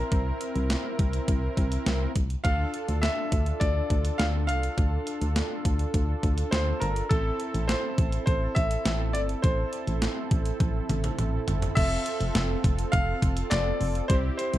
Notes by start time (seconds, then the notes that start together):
Already playing: C4 E4 A#4
0.12 C2, kick, closed hi-hat
0.41 closed hi-hat
0.56 C2, closed hi-hat
0.70 snare, closed hi-hat
0.99 C2, kick, closed hi-hat
1.13 closed hi-hat
1.28 C2, kick, closed hi-hat
1.57 C2, kick, closed hi-hat
1.72 closed hi-hat
1.86 C2, snare, closed hi-hat
2.16 C2, kick, closed hi-hat
2.30 closed hi-hat
2.44 D2 D4 F4 A4 F5, kick, closed hi-hat
2.74 closed hi-hat
2.88 D2, closed hi-hat
3.02 E5, snare, closed hi-hat
3.32 D2, kick, closed hi-hat
3.46 closed hi-hat
3.60 D2 D5, kick, closed hi-hat
3.90 D2, kick, closed hi-hat
4.05 closed hi-hat
4.18 D2 F5, snare, closed hi-hat
4.47 C2 F5, closed hi-hat
4.63 closed hi-hat
4.78 D2, kick, closed hi-hat
5.07 closed hi-hat
5.21 D2, closed hi-hat
5.36 snare, closed hi-hat
5.65 D2, kick, closed hi-hat
5.79 closed hi-hat
5.94 D2, kick, closed hi-hat
6.23 D2, kick, closed hi-hat
6.38 closed hi-hat
6.51 D2 C5, snare, closed hi-hat
6.80 G1 A#4, closed hi-hat
6.96 closed hi-hat
7.09 A1 C4 E4 A4, kick, closed hi-hat
7.40 closed hi-hat
7.54 A1, closed hi-hat
7.68 C5, snare, closed hi-hat
7.98 A1, kick, closed hi-hat
8.12 closed hi-hat
8.26 A1 C5, kick, closed hi-hat
8.55 A1 E5, kick, closed hi-hat
8.71 closed hi-hat
8.86 A1, snare, closed hi-hat
9.13 G1 D5, closed hi-hat
9.29 closed hi-hat
9.42 A1 C5, kick, closed hi-hat
9.73 closed hi-hat
9.87 A1, closed hi-hat
10.02 snare, closed hi-hat
10.31 A1, kick, closed hi-hat
10.45 closed hi-hat
10.60 A1, kick, closed hi-hat, high tom
10.89 A1, closed hi-hat, mid tom
11.04 closed hi-hat, mid tom
11.18 A1, closed hi-hat, mid tom
11.48 G1, closed hi-hat, floor tom
11.62 closed hi-hat, floor tom
11.75 F1 C4 F4 A4 E5, kick, closed hi-hat, crash
12.06 closed hi-hat
12.21 F1, closed hi-hat
12.35 F1, snare, closed hi-hat
12.64 F1, kick, closed hi-hat
12.79 closed hi-hat
12.92 F1 F5, kick, closed hi-hat
13.22 F1, kick, closed hi-hat
13.37 closed hi-hat
13.50 F1 D5, snare, clap, closed hi-hat
13.81 F1, open hi-hat
13.95 closed hi-hat
14.08 C2 C4 E4 G4 C5, kick, closed hi-hat
14.37 C5, closed hi-hat
14.53 C2, closed hi-hat